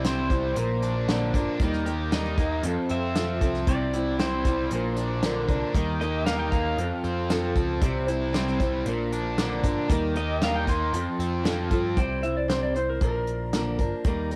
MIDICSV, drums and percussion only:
0, 0, Header, 1, 2, 480
1, 0, Start_track
1, 0, Tempo, 519031
1, 1478, Time_signature, 4, 2, 24, 8
1, 13278, End_track
2, 0, Start_track
2, 0, Title_t, "Drums"
2, 39, Note_on_c, 9, 42, 94
2, 44, Note_on_c, 9, 38, 104
2, 132, Note_off_c, 9, 42, 0
2, 136, Note_off_c, 9, 38, 0
2, 278, Note_on_c, 9, 36, 90
2, 279, Note_on_c, 9, 42, 67
2, 370, Note_off_c, 9, 36, 0
2, 372, Note_off_c, 9, 42, 0
2, 517, Note_on_c, 9, 42, 97
2, 609, Note_off_c, 9, 42, 0
2, 758, Note_on_c, 9, 42, 65
2, 850, Note_off_c, 9, 42, 0
2, 1000, Note_on_c, 9, 42, 93
2, 1005, Note_on_c, 9, 38, 110
2, 1092, Note_off_c, 9, 42, 0
2, 1097, Note_off_c, 9, 38, 0
2, 1238, Note_on_c, 9, 36, 82
2, 1241, Note_on_c, 9, 42, 65
2, 1331, Note_off_c, 9, 36, 0
2, 1333, Note_off_c, 9, 42, 0
2, 1474, Note_on_c, 9, 42, 87
2, 1477, Note_on_c, 9, 36, 117
2, 1566, Note_off_c, 9, 42, 0
2, 1569, Note_off_c, 9, 36, 0
2, 1607, Note_on_c, 9, 38, 32
2, 1699, Note_off_c, 9, 38, 0
2, 1718, Note_on_c, 9, 42, 65
2, 1811, Note_off_c, 9, 42, 0
2, 1958, Note_on_c, 9, 42, 88
2, 1962, Note_on_c, 9, 38, 110
2, 2050, Note_off_c, 9, 42, 0
2, 2055, Note_off_c, 9, 38, 0
2, 2199, Note_on_c, 9, 36, 90
2, 2199, Note_on_c, 9, 42, 68
2, 2291, Note_off_c, 9, 36, 0
2, 2292, Note_off_c, 9, 42, 0
2, 2433, Note_on_c, 9, 42, 88
2, 2525, Note_off_c, 9, 42, 0
2, 2672, Note_on_c, 9, 42, 65
2, 2765, Note_off_c, 9, 42, 0
2, 2915, Note_on_c, 9, 42, 95
2, 2919, Note_on_c, 9, 38, 108
2, 3007, Note_off_c, 9, 42, 0
2, 3012, Note_off_c, 9, 38, 0
2, 3156, Note_on_c, 9, 42, 69
2, 3157, Note_on_c, 9, 36, 84
2, 3248, Note_off_c, 9, 42, 0
2, 3249, Note_off_c, 9, 36, 0
2, 3281, Note_on_c, 9, 38, 36
2, 3373, Note_off_c, 9, 38, 0
2, 3395, Note_on_c, 9, 42, 99
2, 3397, Note_on_c, 9, 36, 105
2, 3487, Note_off_c, 9, 42, 0
2, 3490, Note_off_c, 9, 36, 0
2, 3637, Note_on_c, 9, 42, 76
2, 3730, Note_off_c, 9, 42, 0
2, 3876, Note_on_c, 9, 42, 95
2, 3881, Note_on_c, 9, 38, 109
2, 3969, Note_off_c, 9, 42, 0
2, 3974, Note_off_c, 9, 38, 0
2, 4113, Note_on_c, 9, 42, 78
2, 4115, Note_on_c, 9, 36, 86
2, 4205, Note_off_c, 9, 42, 0
2, 4208, Note_off_c, 9, 36, 0
2, 4352, Note_on_c, 9, 42, 99
2, 4444, Note_off_c, 9, 42, 0
2, 4590, Note_on_c, 9, 42, 74
2, 4683, Note_off_c, 9, 42, 0
2, 4831, Note_on_c, 9, 42, 93
2, 4835, Note_on_c, 9, 38, 115
2, 4923, Note_off_c, 9, 42, 0
2, 4928, Note_off_c, 9, 38, 0
2, 5074, Note_on_c, 9, 36, 82
2, 5075, Note_on_c, 9, 42, 69
2, 5166, Note_off_c, 9, 36, 0
2, 5167, Note_off_c, 9, 42, 0
2, 5313, Note_on_c, 9, 36, 103
2, 5313, Note_on_c, 9, 42, 91
2, 5405, Note_off_c, 9, 36, 0
2, 5405, Note_off_c, 9, 42, 0
2, 5555, Note_on_c, 9, 42, 63
2, 5648, Note_off_c, 9, 42, 0
2, 5790, Note_on_c, 9, 42, 92
2, 5795, Note_on_c, 9, 38, 107
2, 5883, Note_off_c, 9, 42, 0
2, 5887, Note_off_c, 9, 38, 0
2, 6031, Note_on_c, 9, 36, 89
2, 6035, Note_on_c, 9, 42, 64
2, 6123, Note_off_c, 9, 36, 0
2, 6127, Note_off_c, 9, 42, 0
2, 6270, Note_on_c, 9, 42, 87
2, 6363, Note_off_c, 9, 42, 0
2, 6509, Note_on_c, 9, 42, 65
2, 6601, Note_off_c, 9, 42, 0
2, 6749, Note_on_c, 9, 42, 93
2, 6754, Note_on_c, 9, 38, 106
2, 6841, Note_off_c, 9, 42, 0
2, 6846, Note_off_c, 9, 38, 0
2, 6989, Note_on_c, 9, 36, 84
2, 6990, Note_on_c, 9, 42, 72
2, 7082, Note_off_c, 9, 36, 0
2, 7083, Note_off_c, 9, 42, 0
2, 7228, Note_on_c, 9, 42, 98
2, 7229, Note_on_c, 9, 36, 114
2, 7320, Note_off_c, 9, 42, 0
2, 7322, Note_off_c, 9, 36, 0
2, 7471, Note_on_c, 9, 42, 69
2, 7564, Note_off_c, 9, 42, 0
2, 7713, Note_on_c, 9, 42, 95
2, 7717, Note_on_c, 9, 38, 105
2, 7805, Note_off_c, 9, 42, 0
2, 7810, Note_off_c, 9, 38, 0
2, 7842, Note_on_c, 9, 38, 33
2, 7935, Note_off_c, 9, 38, 0
2, 7953, Note_on_c, 9, 36, 91
2, 7954, Note_on_c, 9, 42, 72
2, 8045, Note_off_c, 9, 36, 0
2, 8047, Note_off_c, 9, 42, 0
2, 8190, Note_on_c, 9, 42, 99
2, 8282, Note_off_c, 9, 42, 0
2, 8434, Note_on_c, 9, 42, 67
2, 8526, Note_off_c, 9, 42, 0
2, 8670, Note_on_c, 9, 42, 106
2, 8675, Note_on_c, 9, 38, 113
2, 8763, Note_off_c, 9, 42, 0
2, 8767, Note_off_c, 9, 38, 0
2, 8910, Note_on_c, 9, 42, 74
2, 8911, Note_on_c, 9, 36, 85
2, 9002, Note_off_c, 9, 42, 0
2, 9004, Note_off_c, 9, 36, 0
2, 9152, Note_on_c, 9, 36, 115
2, 9153, Note_on_c, 9, 42, 94
2, 9245, Note_off_c, 9, 36, 0
2, 9245, Note_off_c, 9, 42, 0
2, 9390, Note_on_c, 9, 42, 70
2, 9483, Note_off_c, 9, 42, 0
2, 9630, Note_on_c, 9, 42, 90
2, 9635, Note_on_c, 9, 38, 106
2, 9723, Note_off_c, 9, 42, 0
2, 9727, Note_off_c, 9, 38, 0
2, 9870, Note_on_c, 9, 36, 84
2, 9871, Note_on_c, 9, 42, 71
2, 9963, Note_off_c, 9, 36, 0
2, 9963, Note_off_c, 9, 42, 0
2, 10111, Note_on_c, 9, 42, 93
2, 10203, Note_off_c, 9, 42, 0
2, 10353, Note_on_c, 9, 42, 64
2, 10446, Note_off_c, 9, 42, 0
2, 10588, Note_on_c, 9, 42, 90
2, 10592, Note_on_c, 9, 38, 111
2, 10680, Note_off_c, 9, 42, 0
2, 10685, Note_off_c, 9, 38, 0
2, 10825, Note_on_c, 9, 42, 72
2, 10828, Note_on_c, 9, 36, 89
2, 10917, Note_off_c, 9, 42, 0
2, 10921, Note_off_c, 9, 36, 0
2, 11069, Note_on_c, 9, 36, 102
2, 11069, Note_on_c, 9, 42, 85
2, 11161, Note_off_c, 9, 42, 0
2, 11162, Note_off_c, 9, 36, 0
2, 11310, Note_on_c, 9, 42, 66
2, 11402, Note_off_c, 9, 42, 0
2, 11551, Note_on_c, 9, 42, 81
2, 11556, Note_on_c, 9, 38, 98
2, 11644, Note_off_c, 9, 42, 0
2, 11648, Note_off_c, 9, 38, 0
2, 11793, Note_on_c, 9, 42, 65
2, 11885, Note_off_c, 9, 42, 0
2, 12032, Note_on_c, 9, 36, 110
2, 12032, Note_on_c, 9, 42, 90
2, 12124, Note_off_c, 9, 36, 0
2, 12124, Note_off_c, 9, 42, 0
2, 12270, Note_on_c, 9, 42, 60
2, 12363, Note_off_c, 9, 42, 0
2, 12510, Note_on_c, 9, 42, 86
2, 12514, Note_on_c, 9, 38, 106
2, 12602, Note_off_c, 9, 42, 0
2, 12607, Note_off_c, 9, 38, 0
2, 12752, Note_on_c, 9, 36, 76
2, 12752, Note_on_c, 9, 42, 64
2, 12845, Note_off_c, 9, 36, 0
2, 12845, Note_off_c, 9, 42, 0
2, 12986, Note_on_c, 9, 42, 88
2, 12993, Note_on_c, 9, 36, 105
2, 13079, Note_off_c, 9, 42, 0
2, 13085, Note_off_c, 9, 36, 0
2, 13233, Note_on_c, 9, 42, 57
2, 13278, Note_off_c, 9, 42, 0
2, 13278, End_track
0, 0, End_of_file